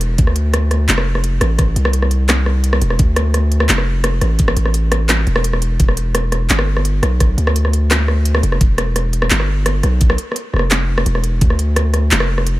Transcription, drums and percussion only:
0.01 closed hi-hat
0.18 kick, closed hi-hat
0.27 cross-stick
0.36 closed hi-hat
0.54 cross-stick, closed hi-hat
0.71 cross-stick, closed hi-hat
0.89 clap, closed hi-hat
0.98 cross-stick
1.15 cross-stick
1.24 closed hi-hat
1.41 cross-stick, closed hi-hat
1.59 kick, cross-stick, closed hi-hat
1.76 closed hi-hat
1.85 cross-stick
1.93 closed hi-hat
2.02 cross-stick
2.11 closed hi-hat
2.29 cross-stick, clap, closed hi-hat
2.46 cross-stick
2.64 closed hi-hat
2.73 cross-stick
2.81 closed hi-hat
2.90 cross-stick
2.99 kick, closed hi-hat
3.16 cross-stick, closed hi-hat
3.34 cross-stick, closed hi-hat
3.52 closed hi-hat
3.60 cross-stick
3.69 clap, closed hi-hat
3.78 cross-stick
4.04 cross-stick, closed hi-hat
4.21 cross-stick, closed hi-hat
4.39 kick, closed hi-hat
4.48 cross-stick
4.57 closed hi-hat
4.66 cross-stick
4.74 closed hi-hat
4.92 cross-stick, closed hi-hat
5.09 cross-stick, clap, closed hi-hat
5.27 closed hi-hat
5.36 cross-stick
5.44 closed hi-hat
5.53 cross-stick
5.62 closed hi-hat
5.80 kick, closed hi-hat
5.89 cross-stick
5.97 closed hi-hat
6.15 cross-stick, closed hi-hat
6.32 cross-stick, closed hi-hat
6.50 clap, closed hi-hat
6.59 cross-stick
6.77 cross-stick
6.85 closed hi-hat
7.03 cross-stick, closed hi-hat
7.20 kick, cross-stick, closed hi-hat
7.38 closed hi-hat
7.47 cross-stick
7.56 closed hi-hat
7.65 cross-stick
7.73 closed hi-hat
7.91 cross-stick, clap, closed hi-hat
8.08 cross-stick
8.25 closed hi-hat
8.35 cross-stick
8.43 closed hi-hat
8.52 cross-stick
8.61 kick, closed hi-hat
8.78 cross-stick, closed hi-hat
8.96 cross-stick, closed hi-hat
9.13 closed hi-hat
9.22 cross-stick
9.30 clap, closed hi-hat
9.40 cross-stick
9.66 cross-stick, closed hi-hat
9.83 cross-stick, closed hi-hat
10.01 kick, closed hi-hat
10.10 cross-stick
10.18 closed hi-hat
10.32 cross-stick
10.36 closed hi-hat
10.54 cross-stick
10.56 cross-stick
10.59 cross-stick
10.71 cross-stick, clap, closed hi-hat
10.98 cross-stick
11.06 closed hi-hat
11.15 cross-stick
11.24 closed hi-hat
11.41 kick, closed hi-hat
11.50 cross-stick
11.59 closed hi-hat
11.76 cross-stick, closed hi-hat
11.94 cross-stick, closed hi-hat
12.11 clap, closed hi-hat
12.20 cross-stick
12.38 cross-stick
12.47 closed hi-hat

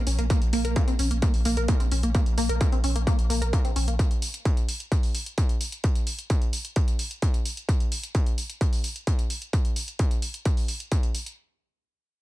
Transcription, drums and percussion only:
0.07 open hi-hat
0.19 closed hi-hat
0.30 kick, closed hi-hat
0.42 closed hi-hat
0.53 open hi-hat
0.65 closed hi-hat
0.76 kick, closed hi-hat
0.88 closed hi-hat
0.99 open hi-hat
1.11 closed hi-hat
1.22 kick, closed hi-hat
1.34 open hi-hat
1.45 open hi-hat
1.57 closed hi-hat
1.68 kick, closed hi-hat
1.80 closed hi-hat
1.92 open hi-hat
2.03 closed hi-hat
2.15 kick, closed hi-hat
2.26 closed hi-hat
2.38 open hi-hat
2.49 closed hi-hat
2.61 kick, closed hi-hat
2.72 closed hi-hat
2.84 open hi-hat
2.96 closed hi-hat
3.07 kick, closed hi-hat
3.19 closed hi-hat
3.30 open hi-hat
3.42 closed hi-hat
3.53 kick, closed hi-hat
3.65 closed hi-hat
3.76 open hi-hat
3.88 closed hi-hat
3.99 kick, closed hi-hat
4.11 closed hi-hat
4.22 open hi-hat
4.34 closed hi-hat
4.45 kick, closed hi-hat
4.57 closed hi-hat
4.69 open hi-hat
4.80 closed hi-hat
4.92 kick, closed hi-hat
5.03 open hi-hat
5.15 open hi-hat
5.26 closed hi-hat
5.38 kick, closed hi-hat
5.49 closed hi-hat
5.61 open hi-hat
5.72 closed hi-hat
5.84 kick, closed hi-hat
5.95 closed hi-hat
6.07 open hi-hat
6.19 closed hi-hat
6.30 kick, closed hi-hat
6.42 closed hi-hat
6.53 open hi-hat
6.65 closed hi-hat
6.76 kick, closed hi-hat
6.88 closed hi-hat
6.99 open hi-hat
7.11 closed hi-hat
7.22 kick, closed hi-hat
7.34 closed hi-hat
7.46 open hi-hat
7.57 closed hi-hat
7.69 kick, closed hi-hat
7.80 closed hi-hat
7.92 open hi-hat
8.03 closed hi-hat
8.15 kick, closed hi-hat
8.26 closed hi-hat
8.38 open hi-hat
8.50 closed hi-hat
8.61 kick, closed hi-hat
8.73 open hi-hat
8.84 open hi-hat
8.96 closed hi-hat
9.07 kick, closed hi-hat
9.19 closed hi-hat
9.30 open hi-hat
9.42 closed hi-hat
9.53 kick, closed hi-hat
9.65 closed hi-hat
9.76 open hi-hat
9.88 closed hi-hat
9.99 kick, closed hi-hat
10.11 closed hi-hat
10.22 open hi-hat
10.34 closed hi-hat
10.45 kick, closed hi-hat
10.57 open hi-hat
10.68 open hi-hat
10.80 closed hi-hat
10.92 kick, closed hi-hat
11.03 closed hi-hat
11.15 open hi-hat
11.26 closed hi-hat

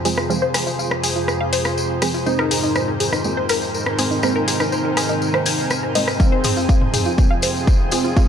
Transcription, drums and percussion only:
0.05 open hi-hat, tambourine
0.17 cross-stick, tambourine
0.30 tambourine
0.54 cross-stick, open hi-hat, tambourine
0.67 tambourine
0.79 tambourine
0.91 cross-stick
1.04 open hi-hat, tambourine
1.16 tambourine
1.28 cross-stick, tambourine
1.53 open hi-hat, tambourine
1.65 cross-stick, tambourine
1.78 tambourine
2.02 cross-stick, open hi-hat, tambourine
2.14 tambourine
2.26 tambourine
2.39 cross-stick
2.51 open hi-hat, tambourine
2.63 tambourine
2.75 cross-stick, tambourine
3.00 open hi-hat, tambourine
3.13 cross-stick, tambourine
3.24 tambourine
3.49 cross-stick, open hi-hat, tambourine
3.62 tambourine
3.74 tambourine
3.86 cross-stick
3.99 open hi-hat, tambourine
4.11 tambourine
4.23 cross-stick, tambourine
4.48 open hi-hat, tambourine
4.60 cross-stick, tambourine
4.72 tambourine
4.97 cross-stick, open hi-hat, tambourine
5.09 tambourine
5.22 tambourine
5.34 cross-stick
5.46 open hi-hat, tambourine
5.59 tambourine
5.70 cross-stick, tambourine
5.95 open hi-hat, tambourine
6.08 cross-stick, tambourine
6.20 kick, tambourine
6.44 mid tom, open hi-hat, tambourine
6.56 tambourine
6.69 kick, tambourine
6.81 mid tom
6.94 mid tom, open hi-hat, tambourine
7.05 tambourine
7.18 kick, tambourine
7.42 open hi-hat, tambourine
7.56 tambourine
7.67 kick, tambourine
7.91 open hi-hat, tambourine
8.05 tambourine
8.17 kick, tambourine

